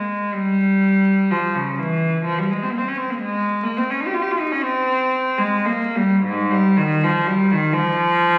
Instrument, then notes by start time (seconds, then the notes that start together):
cello
Already playing: G#3
0.34 G3
1.31 F3
1.55 C#3
1.78 E3
2.24 F3
2.39 G3
2.51 G#3
2.62 C4
2.72 A#3
2.78 C4
2.88 C#4
2.97 C4
3.10 A#3
3.20 G#3
3.64 A#3
3.77 C4
3.90 C#4
4.01 D#4
4.07 G4
4.14 F4
4.22 G4
4.31 F4
4.40 D#4
4.52 C#4
4.62 C4
5.38 G#3
5.66 A#3
5.96 G3
6.23 G#2
6.51 G3
6.77 D#3
7.04 F3
7.27 G3
7.52 D#3
7.73 F3